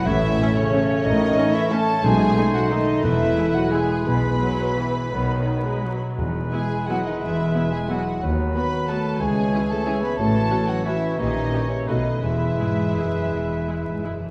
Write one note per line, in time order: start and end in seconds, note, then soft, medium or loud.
0.00 2.05 E4 medium
0.00 2.04 E5 medium
0.05 0.33 A1 medium
0.05 1.03 A2 medium
0.05 0.33 A2 medium
0.05 2.03 A3 medium
0.05 2.00 C#4 medium
0.05 0.55 E4 medium
0.05 2.06 C#5 medium
0.05 0.54 E5 loud
0.05 0.54 E5 medium
0.09 0.57 E3 medium
0.13 1.12 E3 medium
0.22 1.20 A3 medium
0.30 0.97 C#4 medium
0.39 0.49 A3 medium
0.39 0.49 C#4 medium
0.39 0.55 C#5 medium
0.48 0.81 A4 medium
0.55 1.04 C#3 medium
0.55 1.05 C#4 medium
0.55 1.04 C#5 medium
0.55 1.06 C#5 medium
0.55 0.72 C#5 medium
0.64 1.62 C#6 medium
0.73 0.81 A3 medium
0.73 0.82 C#4 medium
0.73 0.88 C#5 medium
0.82 1.46 A4 medium
0.90 1.37 C#5 medium
0.98 1.28 C#4 medium
1.05 1.31 A1 medium
1.05 2.05 A2 medium
1.05 1.32 A2 medium
1.05 1.55 D#3 medium
1.05 1.54 D#4 medium
1.05 1.54 D#5 loud
1.05 1.56 D#5 medium
1.13 2.05 E3 medium
1.22 2.20 A3 medium
1.29 1.96 C#4 medium
1.37 1.45 A3 medium
1.37 1.45 C#4 medium
1.37 1.54 C#5 medium
1.47 1.79 A4 medium
1.54 1.71 E3 medium
1.54 1.71 E4 medium
1.54 1.71 C#5 medium
1.54 1.71 E5 medium
1.54 1.73 E5 medium
1.63 2.05 C#6 medium
1.70 1.79 A3 medium
1.70 2.04 A3 medium
1.70 1.80 C#4 medium
1.70 2.04 A4 medium
1.70 1.88 C#5 medium
1.70 2.03 A5 loud
1.70 2.04 A5 medium
1.80 2.45 A4 medium
1.89 2.05 C#5 medium
1.97 2.05 C#4 medium
2.02 2.31 B1 medium
2.02 2.50 B2 medium
2.02 2.31 B2 medium
2.02 3.05 B2 medium
2.02 2.52 G#3 loud
2.02 3.73 A3 medium
2.02 3.04 D#4 medium
2.02 2.55 G#4 loud
2.02 3.05 C5 medium
2.02 2.53 G#5 loud
2.02 2.56 G#5 medium
2.13 3.05 F#3 medium
2.21 3.05 A3 medium
2.29 2.95 D#4 medium
2.36 2.45 A3 medium
2.36 2.44 D#4 medium
2.36 2.87 C5 medium
2.47 2.79 A4 medium
2.54 2.71 F#3 medium
2.54 2.71 F#4 medium
2.54 2.71 D#5 medium
2.54 2.71 F#5 medium
2.64 3.05 C6 medium
2.70 3.04 D#3 medium
2.70 2.78 A3 medium
2.70 2.78 D#4 medium
2.70 3.04 D#4 medium
2.70 3.03 D#5 medium
2.70 3.05 D#5 medium
2.80 3.05 A4 medium
2.89 3.05 C5 medium
2.97 3.05 D#4 soft
3.02 3.31 E1 medium
3.02 3.30 E2 medium
3.02 3.51 E2 medium
3.02 3.55 E3 medium
3.02 4.08 E3 medium
3.02 4.84 E4 medium
3.02 3.54 E4 medium
3.02 4.85 B4 medium
3.02 3.56 E5 medium
3.02 3.54 E5 loud
3.13 4.23 G#3 soft
3.21 4.32 E4 medium
3.29 3.97 B4 soft
3.36 3.44 G#3 medium
3.36 3.44 E4 medium
3.36 3.88 G#4 medium
3.46 3.80 E5 soft
3.54 3.72 F#3 medium
3.54 3.73 F#4 medium
3.54 3.72 F#5 medium
3.54 3.71 F#5 medium
3.54 3.71 B5 soft
3.63 5.14 G#5 soft
3.71 3.79 G#3 medium
3.71 4.84 G#3 medium
3.71 4.06 G#3 medium
3.71 3.80 E4 medium
3.71 4.07 G#4 medium
3.71 4.09 G#5 medium
3.71 4.06 G#5 medium
3.71 4.68 B5 medium
3.81 4.59 E5 medium
3.89 4.50 G#4 soft
3.98 4.41 B4 soft
4.06 4.36 B1 medium
4.06 5.11 B2 medium
4.06 4.36 B2 medium
4.06 4.57 B2 medium
4.06 5.98 B3 medium
4.06 6.02 B4 medium
4.06 5.97 B5 medium
4.06 6.02 B5 medium
4.15 5.28 B3 soft
4.24 5.14 G#3 soft
4.33 5.04 E4 soft
4.41 4.75 F#3 medium
4.41 4.95 B4 soft
4.51 4.86 G#4 soft
4.60 4.78 E5 soft
4.69 5.75 B5 soft
4.78 5.12 E3 medium
4.78 5.14 E5 soft
4.87 5.14 G#4 soft
4.96 5.47 B4 soft
5.05 5.14 E4 soft
5.11 5.42 B1 medium
5.11 6.19 B2 medium
5.11 5.42 B2 medium
5.11 5.65 D#3 medium
5.11 5.97 F#3 medium
5.11 5.97 D#4 medium
5.11 5.97 B4 medium
5.21 6.19 F#3 soft
5.29 6.10 B3 soft
5.39 5.57 D#4 soft
5.48 5.92 B4 soft
5.58 6.01 D#4 soft
5.66 5.84 G#3 medium
5.66 5.84 D#5 soft
5.76 6.70 B5 soft
5.85 6.18 F#3 soft
5.85 6.20 D#5 soft
5.94 6.43 B4 soft
6.03 6.20 D#4 soft
6.11 6.26 B3 soft
6.18 6.46 E1 medium
6.18 6.66 E2 medium
6.18 6.47 E2 medium
6.18 7.20 E3 medium
6.18 8.18 G#3 medium
6.18 8.17 E4 medium
6.18 8.18 B4 medium
6.27 7.28 B3 soft
6.36 6.52 E4 soft
6.44 7.04 B4 soft
6.52 6.85 G#3 medium
6.52 6.61 B3 soft
6.52 6.61 E4 soft
6.52 7.13 E4 soft
6.52 6.86 G#4 medium
6.52 6.85 G#5 medium
6.52 6.86 G#5 medium
6.61 6.78 E5 soft
6.71 6.88 B5 soft
6.80 6.96 E5 soft
6.87 7.05 F#3 medium
6.87 6.97 B3 soft
6.87 6.97 E4 soft
6.87 7.04 F#4 medium
6.87 7.04 F#5 medium
6.87 7.08 F#5 medium
6.87 7.71 B5 soft
6.97 7.63 E5 soft
7.04 7.11 D#3 medium
7.04 7.20 D#4 medium
7.04 7.45 B4 soft
7.04 7.20 D#5 medium
7.04 7.21 D#5 medium
7.14 7.36 E4 soft
7.19 7.48 E1 medium
7.19 7.48 E2 medium
7.19 7.69 E3 medium
7.19 8.23 E3 medium
7.19 7.72 E4 medium
7.19 7.71 E5 medium
7.23 7.74 E5 medium
7.29 8.36 B3 soft
7.38 7.53 E4 soft
7.46 8.05 B4 soft
7.54 7.62 B3 soft
7.54 7.62 E4 soft
7.54 8.13 E4 soft
7.64 7.80 E5 soft
7.72 7.89 G#3 medium
7.72 7.79 G#4 medium
7.72 7.89 G#5 medium
7.72 7.91 G#5 medium
7.72 7.89 B5 soft
7.81 7.97 E5 soft
7.87 8.21 F#3 medium
7.87 7.97 B3 soft
7.87 7.97 E4 soft
7.87 8.21 F#4 medium
7.87 8.22 F#5 medium
7.87 8.23 F#5 medium
7.87 8.79 B5 soft
7.98 8.23 E5 soft
8.06 8.54 B4 soft
8.14 8.23 E4 soft
8.22 8.49 D#2 medium
8.22 9.22 D#3 soft
8.22 9.19 F#3 medium
8.22 9.22 F#4 medium
8.22 9.22 B4 medium
8.30 9.22 D#4 soft
8.38 9.11 B3 soft
8.46 8.62 F#4 soft
8.55 8.86 B3 medium
8.55 8.64 B3 soft
8.55 8.64 F#4 soft
8.55 8.86 B4 medium
8.55 8.96 B4 soft
8.55 8.90 B5 medium
8.55 8.87 B5 medium
8.63 9.04 F#4 soft
8.71 8.87 F#5 soft
8.80 9.22 B5 soft
8.88 9.20 A3 medium
8.88 8.97 B3 soft
8.88 8.97 F#4 soft
8.88 9.20 A4 medium
8.88 9.22 F#5 soft
8.88 9.22 A5 medium
8.88 9.21 A5 medium
8.97 9.22 B4 soft
9.05 9.22 F#4 soft
9.12 9.21 B3 soft
9.19 9.47 C#2 medium
9.19 10.19 C#3 medium
9.19 10.16 E3 medium
9.19 9.69 G#3 medium
9.19 10.18 G#4 medium
9.19 9.71 G#4 medium
9.19 10.18 C#5 medium
9.19 9.69 G#5 medium
9.19 9.72 G#5 medium
9.27 10.19 G#3 soft
9.35 10.33 C#4 soft
9.44 10.09 E4 soft
9.52 9.62 C#4 soft
9.52 9.62 E4 soft
9.52 9.68 E5 soft
9.60 9.93 C#5 soft
9.69 9.86 A3 medium
9.69 9.87 A4 medium
9.69 9.85 E5 soft
9.69 9.88 A5 medium
9.69 9.87 A5 medium
9.78 10.76 E6 soft
9.86 10.03 G#3 medium
9.86 9.94 C#4 soft
9.86 9.94 E4 soft
9.86 10.03 G#4 medium
9.86 10.01 E5 soft
9.86 10.02 G#5 medium
9.86 10.03 G#5 medium
9.94 10.58 C#5 soft
10.02 10.19 B3 medium
10.02 10.18 B4 medium
10.02 10.50 E5 soft
10.02 10.19 B5 medium
10.10 11.89 E4 soft
10.17 10.46 A1 medium
10.17 11.20 A2 medium
10.17 10.45 A2 medium
10.17 10.82 E3 medium
10.17 10.68 A3 medium
10.17 10.82 F#4 medium
10.17 10.68 A4 medium
10.17 10.82 C#5 medium
10.17 10.71 A5 medium
10.17 10.68 A5 medium
10.26 11.20 E3 soft
10.34 11.34 C#4 soft
10.42 11.10 F#4 soft
10.50 10.59 C#4 medium
10.50 10.58 F#4 medium
10.50 11.02 E5 soft
10.59 10.93 C#5 soft
10.68 10.86 F#3 medium
10.68 10.86 F#4 medium
10.68 10.84 F#5 soft
10.68 10.85 F#5 medium
10.68 10.86 F#5 medium
10.77 11.78 E6 soft
10.85 11.18 E3 medium
10.85 11.19 E3 medium
10.85 10.94 C#4 soft
10.85 11.19 E4 medium
10.85 10.94 F#4 soft
10.85 11.21 F#4 medium
10.85 11.18 C#5 medium
10.85 11.18 E5 medium
10.85 11.21 E5 medium
10.85 11.20 F#5 medium
10.95 11.60 C#5 soft
11.03 11.51 E5 soft
11.11 11.20 F#4 soft
11.19 11.47 A#1 medium
11.19 11.46 A#2 medium
11.19 11.89 A#2 medium
11.19 11.70 D#3 medium
11.19 11.89 E3 medium
11.19 11.69 D#4 medium
11.19 11.89 G4 medium
11.19 11.89 C#5 medium
11.19 11.69 D#5 medium
11.19 11.71 D#5 medium
11.27 11.89 A#3 soft
11.35 11.89 C#4 soft
11.43 11.89 G4 soft
11.52 11.61 C#4 soft
11.52 11.61 G4 soft
11.52 11.89 E5 soft
11.61 11.89 C#5 soft
11.70 11.87 C#3 soft
11.70 11.87 C#4 medium
11.70 11.88 C#5 medium
11.70 11.89 G5 soft
11.79 11.89 E6 soft
11.87 12.17 B1 soft
11.87 12.17 B2 medium
11.87 12.24 B2 soft
11.87 12.22 D#3 medium
11.87 12.22 A3 soft
11.87 11.97 A3 soft
11.87 12.22 D#4 medium
11.87 12.22 F#4 soft
11.87 11.97 F#4 soft
11.87 12.21 B4 soft
11.87 12.22 D#5 medium
11.87 12.23 D#5 medium
11.97 12.24 F#3 soft
12.06 12.24 A3 soft
12.15 12.24 F#4 soft
12.22 12.53 E1 medium
12.22 12.53 E2 medium
12.22 12.74 E2 medium
12.22 13.31 E3 soft
12.22 14.19 E3 medium
12.22 14.18 G#3 medium
12.22 14.18 E4 medium
12.22 14.17 B4 soft
12.22 14.18 E5 medium
12.22 14.22 E5 medium
12.32 13.40 G#3 soft
12.41 13.48 E4 soft
12.50 13.24 B4 soft
12.59 12.94 G#2 soft
12.59 12.68 G#3 soft
12.59 12.67 E4 soft
12.59 13.14 G#4 soft
12.69 13.05 E5 soft
12.78 12.96 B5 soft
12.88 13.93 G#5 soft
12.97 13.33 F#2 soft
12.97 13.06 G#3 soft
12.97 13.06 E4 soft
12.97 13.84 B5 soft
13.06 13.75 E5 soft
13.15 13.66 G#4 soft
13.25 13.57 B4 soft
13.32 13.62 E1 soft
13.32 13.86 E2 soft
13.32 14.19 E3 soft
13.41 14.31 G#3 soft
13.49 14.28 E4 soft
13.58 14.28 B4 soft
13.67 13.76 G#3 soft
13.67 13.76 E4 soft
13.67 14.20 G#4 soft
13.77 14.11 E5 soft
13.85 14.04 G#2 soft
13.85 14.03 B5 soft
13.95 14.31 G#5 soft
14.03 14.31 F#2 soft
14.03 14.12 G#3 soft
14.03 14.11 E4 soft
14.03 14.31 B5 soft
14.13 14.31 E5 soft
14.20 14.31 E3 soft
14.20 14.31 G#4 soft
14.25 14.31 A3 soft